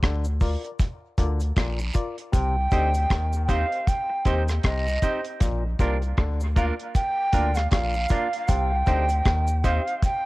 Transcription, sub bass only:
0, 0, Header, 1, 2, 480
1, 0, Start_track
1, 0, Key_signature, -2, "major"
1, 0, Tempo, 769231
1, 1456, Time_signature, 4, 2, 24, 8
1, 6400, End_track
2, 0, Start_track
2, 0, Title_t, "Sub bass"
2, 0, Program_c, 0, 38
2, 20, Note_on_c, 0, 38, 93
2, 352, Note_off_c, 0, 38, 0
2, 741, Note_on_c, 0, 38, 92
2, 949, Note_off_c, 0, 38, 0
2, 981, Note_on_c, 0, 34, 98
2, 1189, Note_off_c, 0, 34, 0
2, 1460, Note_on_c, 0, 36, 106
2, 1669, Note_off_c, 0, 36, 0
2, 1700, Note_on_c, 0, 38, 105
2, 1908, Note_off_c, 0, 38, 0
2, 1939, Note_on_c, 0, 39, 94
2, 2272, Note_off_c, 0, 39, 0
2, 2658, Note_on_c, 0, 39, 95
2, 2868, Note_off_c, 0, 39, 0
2, 2900, Note_on_c, 0, 36, 96
2, 3109, Note_off_c, 0, 36, 0
2, 3379, Note_on_c, 0, 34, 105
2, 3588, Note_off_c, 0, 34, 0
2, 3618, Note_on_c, 0, 36, 101
2, 3827, Note_off_c, 0, 36, 0
2, 3858, Note_on_c, 0, 38, 92
2, 4191, Note_off_c, 0, 38, 0
2, 4578, Note_on_c, 0, 38, 90
2, 4788, Note_off_c, 0, 38, 0
2, 4821, Note_on_c, 0, 34, 90
2, 5029, Note_off_c, 0, 34, 0
2, 5301, Note_on_c, 0, 36, 107
2, 5509, Note_off_c, 0, 36, 0
2, 5542, Note_on_c, 0, 38, 98
2, 5750, Note_off_c, 0, 38, 0
2, 5779, Note_on_c, 0, 39, 104
2, 6112, Note_off_c, 0, 39, 0
2, 6400, End_track
0, 0, End_of_file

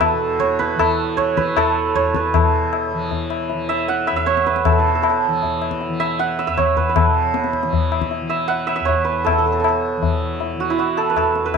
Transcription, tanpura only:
0, 0, Header, 1, 2, 480
1, 0, Start_track
1, 0, Tempo, 386598
1, 12, Time_signature, 3, 2, 24, 8
1, 7212, Tempo, 382409
1, 14449, End_track
2, 0, Start_track
2, 0, Title_t, "Tanpura"
2, 0, Program_c, 0, 104
2, 0, Note_on_c, 0, 40, 65
2, 0, Note_on_c, 0, 47, 58
2, 0, Note_on_c, 0, 52, 60
2, 171, Note_off_c, 0, 47, 0
2, 176, Note_on_c, 0, 47, 59
2, 933, Note_off_c, 0, 52, 0
2, 933, Note_on_c, 0, 52, 63
2, 1670, Note_off_c, 0, 52, 0
2, 1670, Note_on_c, 0, 52, 58
2, 2400, Note_off_c, 0, 40, 0
2, 2405, Note_on_c, 0, 40, 59
2, 2900, Note_off_c, 0, 47, 0
2, 2905, Note_on_c, 0, 47, 60
2, 3640, Note_off_c, 0, 52, 0
2, 3640, Note_on_c, 0, 52, 59
2, 4377, Note_off_c, 0, 52, 0
2, 4377, Note_on_c, 0, 52, 61
2, 5104, Note_off_c, 0, 40, 0
2, 5109, Note_on_c, 0, 40, 58
2, 5821, Note_off_c, 0, 47, 0
2, 5826, Note_on_c, 0, 47, 66
2, 6549, Note_off_c, 0, 52, 0
2, 6549, Note_on_c, 0, 52, 64
2, 7305, Note_off_c, 0, 52, 0
2, 7305, Note_on_c, 0, 52, 63
2, 8036, Note_off_c, 0, 40, 0
2, 8041, Note_on_c, 0, 40, 56
2, 8775, Note_off_c, 0, 47, 0
2, 8780, Note_on_c, 0, 47, 65
2, 9501, Note_off_c, 0, 52, 0
2, 9501, Note_on_c, 0, 52, 61
2, 10229, Note_off_c, 0, 52, 0
2, 10229, Note_on_c, 0, 52, 58
2, 10968, Note_off_c, 0, 40, 0
2, 10973, Note_on_c, 0, 40, 64
2, 11690, Note_off_c, 0, 47, 0
2, 11695, Note_on_c, 0, 47, 53
2, 12430, Note_off_c, 0, 52, 0
2, 12430, Note_on_c, 0, 52, 57
2, 13166, Note_off_c, 0, 52, 0
2, 13166, Note_on_c, 0, 52, 57
2, 13907, Note_off_c, 0, 40, 0
2, 13912, Note_on_c, 0, 40, 54
2, 14422, Note_off_c, 0, 47, 0
2, 14449, Note_off_c, 0, 40, 0
2, 14449, Note_off_c, 0, 52, 0
2, 14449, End_track
0, 0, End_of_file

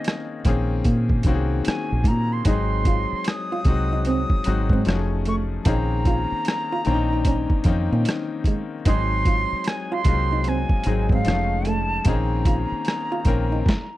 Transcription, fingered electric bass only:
0, 0, Header, 1, 3, 480
1, 0, Start_track
1, 0, Key_signature, -5, "minor"
1, 0, Tempo, 800000
1, 1474, Time_signature, 4, 2, 24, 8
1, 8384, End_track
2, 0, Start_track
2, 0, Title_t, "Fingered electric bass"
2, 0, Program_c, 0, 33
2, 274, Note_on_c, 0, 34, 77
2, 490, Note_off_c, 0, 34, 0
2, 512, Note_on_c, 0, 46, 97
2, 729, Note_off_c, 0, 46, 0
2, 751, Note_on_c, 0, 36, 84
2, 968, Note_off_c, 0, 36, 0
2, 1154, Note_on_c, 0, 34, 74
2, 1227, Note_on_c, 0, 46, 74
2, 1236, Note_off_c, 0, 34, 0
2, 1446, Note_off_c, 0, 46, 0
2, 1477, Note_on_c, 0, 32, 107
2, 1827, Note_off_c, 0, 32, 0
2, 2193, Note_on_c, 0, 36, 81
2, 2545, Note_off_c, 0, 36, 0
2, 2683, Note_on_c, 0, 32, 99
2, 2815, Note_off_c, 0, 32, 0
2, 2821, Note_on_c, 0, 44, 83
2, 2903, Note_off_c, 0, 44, 0
2, 2920, Note_on_c, 0, 29, 89
2, 3348, Note_off_c, 0, 29, 0
2, 3398, Note_on_c, 0, 34, 94
2, 3748, Note_off_c, 0, 34, 0
2, 4122, Note_on_c, 0, 34, 76
2, 4470, Note_off_c, 0, 34, 0
2, 4592, Note_on_c, 0, 41, 87
2, 4729, Note_off_c, 0, 41, 0
2, 4754, Note_on_c, 0, 46, 79
2, 4830, Note_off_c, 0, 46, 0
2, 5318, Note_on_c, 0, 32, 88
2, 5668, Note_off_c, 0, 32, 0
2, 6033, Note_on_c, 0, 36, 80
2, 6385, Note_off_c, 0, 36, 0
2, 6519, Note_on_c, 0, 32, 88
2, 6653, Note_off_c, 0, 32, 0
2, 6660, Note_on_c, 0, 44, 76
2, 6761, Note_on_c, 0, 29, 85
2, 6770, Note_off_c, 0, 44, 0
2, 7190, Note_off_c, 0, 29, 0
2, 7237, Note_on_c, 0, 34, 100
2, 7588, Note_off_c, 0, 34, 0
2, 7955, Note_on_c, 0, 34, 74
2, 8170, Note_off_c, 0, 34, 0
2, 8384, End_track
3, 0, Start_track
3, 0, Title_t, "Muted fingered electric bass strokes"
3, 1004, Note_on_c, 9, 29, 44
3, 1064, Note_off_c, 9, 29, 0
3, 1875, Note_on_c, 9, 29, 38
3, 1935, Note_off_c, 9, 29, 0
3, 3792, Note_on_c, 9, 29, 41
3, 3852, Note_off_c, 9, 29, 0
3, 5716, Note_on_c, 9, 29, 42
3, 5776, Note_off_c, 9, 29, 0
3, 7632, Note_on_c, 9, 29, 37
3, 7692, Note_off_c, 9, 29, 0
3, 8384, End_track
0, 0, End_of_file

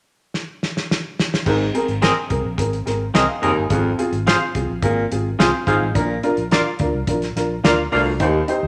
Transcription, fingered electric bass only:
0, 0, Header, 1, 2, 480
1, 0, Start_track
1, 0, Key_signature, -4, "major"
1, 0, Tempo, 561798
1, 1249, Time_signature, 4, 2, 24, 8
1, 7410, End_track
2, 0, Start_track
2, 0, Title_t, "Fingered electric bass"
2, 0, Program_c, 0, 33
2, 1252, Note_on_c, 0, 32, 100
2, 1434, Note_off_c, 0, 32, 0
2, 1610, Note_on_c, 0, 32, 84
2, 1793, Note_off_c, 0, 32, 0
2, 1971, Note_on_c, 0, 36, 72
2, 2062, Note_off_c, 0, 36, 0
2, 2090, Note_on_c, 0, 34, 78
2, 2181, Note_off_c, 0, 34, 0
2, 2208, Note_on_c, 0, 32, 96
2, 2392, Note_off_c, 0, 32, 0
2, 2447, Note_on_c, 0, 32, 84
2, 2631, Note_off_c, 0, 32, 0
2, 2686, Note_on_c, 0, 36, 80
2, 2779, Note_off_c, 0, 36, 0
2, 2927, Note_on_c, 0, 30, 84
2, 3019, Note_off_c, 0, 30, 0
2, 3046, Note_on_c, 0, 31, 74
2, 3138, Note_off_c, 0, 31, 0
2, 3165, Note_on_c, 0, 32, 92
2, 3350, Note_off_c, 0, 32, 0
2, 3522, Note_on_c, 0, 32, 86
2, 3707, Note_off_c, 0, 32, 0
2, 3890, Note_on_c, 0, 36, 73
2, 3980, Note_off_c, 0, 36, 0
2, 4013, Note_on_c, 0, 34, 78
2, 4103, Note_off_c, 0, 34, 0
2, 4124, Note_on_c, 0, 32, 91
2, 4309, Note_off_c, 0, 32, 0
2, 4371, Note_on_c, 0, 32, 88
2, 4553, Note_off_c, 0, 32, 0
2, 4609, Note_on_c, 0, 36, 78
2, 4700, Note_off_c, 0, 36, 0
2, 4845, Note_on_c, 0, 32, 85
2, 4938, Note_off_c, 0, 32, 0
2, 4967, Note_on_c, 0, 33, 78
2, 5059, Note_off_c, 0, 33, 0
2, 5088, Note_on_c, 0, 34, 92
2, 5271, Note_off_c, 0, 34, 0
2, 5447, Note_on_c, 0, 34, 79
2, 5631, Note_off_c, 0, 34, 0
2, 5807, Note_on_c, 0, 38, 76
2, 5899, Note_off_c, 0, 38, 0
2, 5925, Note_on_c, 0, 36, 84
2, 6018, Note_off_c, 0, 36, 0
2, 6043, Note_on_c, 0, 34, 88
2, 6228, Note_off_c, 0, 34, 0
2, 6288, Note_on_c, 0, 34, 82
2, 6472, Note_off_c, 0, 34, 0
2, 6531, Note_on_c, 0, 38, 79
2, 6713, Note_off_c, 0, 38, 0
2, 6771, Note_on_c, 0, 36, 88
2, 7008, Note_off_c, 0, 36, 0
2, 7008, Note_on_c, 0, 39, 95
2, 7192, Note_off_c, 0, 39, 0
2, 7372, Note_on_c, 0, 39, 83
2, 7410, Note_off_c, 0, 39, 0
2, 7410, End_track
0, 0, End_of_file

